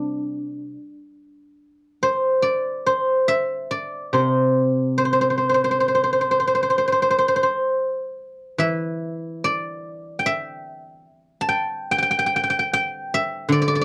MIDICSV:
0, 0, Header, 1, 2, 480
1, 0, Start_track
1, 0, Tempo, 841515
1, 904, Time_signature, 4, 2, 24, 8
1, 1388, Tempo, 859599
1, 2828, Tempo, 899550
1, 4748, Tempo, 816327
1, 7827, End_track
2, 0, Start_track
2, 0, Title_t, "Guzheng"
2, 0, Program_c, 0, 107
2, 0, Note_on_c, 0, 48, 42
2, 0, Note_on_c, 0, 55, 32
2, 0, Note_on_c, 0, 60, 33
2, 0, Note_on_c, 0, 62, 32
2, 0, Note_on_c, 0, 72, 58
2, 125, Note_off_c, 0, 72, 0
2, 187, Note_off_c, 0, 55, 0
2, 420, Note_off_c, 0, 48, 0
2, 423, Note_off_c, 0, 60, 0
2, 662, Note_off_c, 0, 62, 0
2, 1156, Note_on_c, 0, 72, 60
2, 1383, Note_on_c, 0, 74, 65
2, 1627, Note_off_c, 0, 72, 0
2, 1629, Note_on_c, 0, 72, 59
2, 1862, Note_on_c, 0, 76, 77
2, 2099, Note_off_c, 0, 74, 0
2, 2101, Note_on_c, 0, 74, 63
2, 2335, Note_on_c, 0, 48, 54
2, 2340, Note_off_c, 0, 72, 0
2, 2342, Note_on_c, 0, 72, 62
2, 2806, Note_off_c, 0, 72, 0
2, 2809, Note_on_c, 0, 72, 54
2, 2821, Note_off_c, 0, 76, 0
2, 2846, Note_off_c, 0, 72, 0
2, 2848, Note_on_c, 0, 72, 38
2, 2888, Note_off_c, 0, 72, 0
2, 2890, Note_on_c, 0, 72, 46
2, 2932, Note_off_c, 0, 72, 0
2, 2934, Note_on_c, 0, 72, 42
2, 2980, Note_off_c, 0, 72, 0
2, 2982, Note_on_c, 0, 72, 47
2, 3020, Note_off_c, 0, 72, 0
2, 3022, Note_on_c, 0, 72, 39
2, 3083, Note_off_c, 0, 72, 0
2, 3085, Note_on_c, 0, 72, 40
2, 3108, Note_off_c, 0, 72, 0
2, 3110, Note_on_c, 0, 72, 39
2, 3117, Note_off_c, 0, 74, 0
2, 3161, Note_off_c, 0, 72, 0
2, 3164, Note_on_c, 0, 72, 41
2, 3198, Note_off_c, 0, 72, 0
2, 3200, Note_on_c, 0, 72, 36
2, 3248, Note_off_c, 0, 72, 0
2, 3250, Note_on_c, 0, 72, 41
2, 3289, Note_off_c, 0, 72, 0
2, 3291, Note_on_c, 0, 72, 35
2, 3325, Note_off_c, 0, 72, 0
2, 3327, Note_on_c, 0, 72, 40
2, 3372, Note_off_c, 0, 72, 0
2, 3374, Note_on_c, 0, 72, 32
2, 3420, Note_off_c, 0, 72, 0
2, 3423, Note_on_c, 0, 72, 39
2, 3464, Note_off_c, 0, 72, 0
2, 3466, Note_on_c, 0, 72, 34
2, 3518, Note_off_c, 0, 72, 0
2, 3520, Note_on_c, 0, 72, 39
2, 3564, Note_off_c, 0, 72, 0
2, 3566, Note_on_c, 0, 72, 34
2, 3605, Note_off_c, 0, 72, 0
2, 3607, Note_on_c, 0, 72, 40
2, 3645, Note_off_c, 0, 72, 0
2, 3647, Note_on_c, 0, 72, 36
2, 3687, Note_off_c, 0, 72, 0
2, 3689, Note_on_c, 0, 72, 37
2, 3725, Note_off_c, 0, 72, 0
2, 3727, Note_on_c, 0, 72, 34
2, 3768, Note_off_c, 0, 72, 0
2, 3770, Note_on_c, 0, 72, 39
2, 3771, Note_off_c, 0, 48, 0
2, 3820, Note_off_c, 0, 72, 0
2, 3822, Note_on_c, 0, 72, 39
2, 3844, Note_off_c, 0, 72, 0
2, 3847, Note_on_c, 0, 72, 46
2, 3897, Note_off_c, 0, 72, 0
2, 3899, Note_on_c, 0, 72, 40
2, 3942, Note_off_c, 0, 72, 0
2, 3944, Note_on_c, 0, 72, 45
2, 3984, Note_off_c, 0, 72, 0
2, 3987, Note_on_c, 0, 72, 43
2, 4036, Note_off_c, 0, 72, 0
2, 4038, Note_on_c, 0, 72, 47
2, 4078, Note_off_c, 0, 72, 0
2, 4080, Note_on_c, 0, 72, 41
2, 4115, Note_off_c, 0, 72, 0
2, 4117, Note_on_c, 0, 72, 46
2, 4735, Note_on_c, 0, 52, 52
2, 4742, Note_on_c, 0, 76, 78
2, 5217, Note_off_c, 0, 72, 0
2, 5237, Note_on_c, 0, 74, 73
2, 5678, Note_on_c, 0, 79, 56
2, 5716, Note_off_c, 0, 76, 0
2, 5718, Note_on_c, 0, 76, 80
2, 6190, Note_off_c, 0, 52, 0
2, 6322, Note_off_c, 0, 74, 0
2, 6394, Note_on_c, 0, 81, 66
2, 6437, Note_off_c, 0, 79, 0
2, 6439, Note_on_c, 0, 79, 80
2, 6688, Note_off_c, 0, 79, 0
2, 6690, Note_on_c, 0, 79, 79
2, 6728, Note_off_c, 0, 76, 0
2, 6730, Note_off_c, 0, 79, 0
2, 6732, Note_on_c, 0, 79, 55
2, 6754, Note_off_c, 0, 79, 0
2, 6757, Note_on_c, 0, 79, 61
2, 6803, Note_off_c, 0, 79, 0
2, 6805, Note_on_c, 0, 79, 57
2, 6850, Note_off_c, 0, 79, 0
2, 6853, Note_on_c, 0, 79, 66
2, 6894, Note_off_c, 0, 79, 0
2, 6897, Note_on_c, 0, 79, 54
2, 6952, Note_off_c, 0, 79, 0
2, 6954, Note_on_c, 0, 79, 63
2, 6996, Note_off_c, 0, 79, 0
2, 6998, Note_on_c, 0, 79, 58
2, 7034, Note_off_c, 0, 79, 0
2, 7036, Note_on_c, 0, 79, 63
2, 7087, Note_off_c, 0, 79, 0
2, 7089, Note_on_c, 0, 79, 62
2, 7171, Note_off_c, 0, 79, 0
2, 7174, Note_on_c, 0, 79, 90
2, 7244, Note_off_c, 0, 81, 0
2, 7412, Note_on_c, 0, 76, 89
2, 7615, Note_on_c, 0, 50, 53
2, 7637, Note_on_c, 0, 74, 76
2, 7689, Note_off_c, 0, 74, 0
2, 7692, Note_on_c, 0, 74, 59
2, 7726, Note_off_c, 0, 74, 0
2, 7728, Note_on_c, 0, 74, 64
2, 7770, Note_off_c, 0, 74, 0
2, 7772, Note_on_c, 0, 74, 52
2, 7805, Note_off_c, 0, 74, 0
2, 7808, Note_on_c, 0, 74, 59
2, 7827, Note_off_c, 0, 50, 0
2, 7827, Note_off_c, 0, 74, 0
2, 7827, Note_off_c, 0, 76, 0
2, 7827, Note_off_c, 0, 79, 0
2, 7827, End_track
0, 0, End_of_file